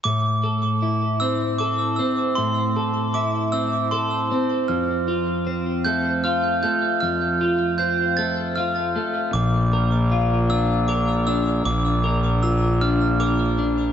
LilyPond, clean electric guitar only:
\new Staff \with { instrumentName = "Clean electric guitar" } { \time 6/8 \key a \phrygian \tempo 4. = 52 a,8 a'8 e'8 c'8 a'8 c'8 | a,8 a'8 e'8 c'8 a'8 c'8 | f,8 f'8 c'8 a8 f'8 a8 | f,8 f'8 c'8 a8 f'8 a8 |
bes,8 bes'8 f'8 d'8 bes'8 d'8 | bes,8 bes'8 f'8 d'8 bes'8 d'8 | }